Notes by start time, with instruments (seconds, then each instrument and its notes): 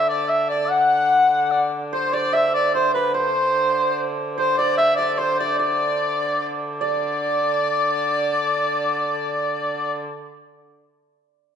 Already playing: hurdy-gurdy D3
0.08 shawm D5
0.27 shawm E5
0.47 shawm D5
0.68 shawm F#5
1.51 shawm D5
1.93 hurdy-gurdy D3, hammered dulcimer C5, shawm C5
2.13 shawm D5, hammered dulcimer D5
2.33 hammered dulcimer E5, shawm E5
2.53 shawm D5
2.73 shawm C5, hammered dulcimer C5
2.94 shawm B4, hammered dulcimer B4
3.14 shawm C5, hammered dulcimer C5
4.37 shawm C5, hammered dulcimer C5
4.58 shawm D5, hammered dulcimer D5
4.77 shawm E5, hammered dulcimer E5
4.96 shawm D5, hammered dulcimer D5
5.14 shawm C5 D5
5.19 hammered dulcimer C5, shawm C5
5.39 shawm D5, hammered dulcimer D5
5.58 shawm D5, hammered dulcimer D5
6.81 hurdy-gurdy D3, shawm D5, hammered dulcimer D5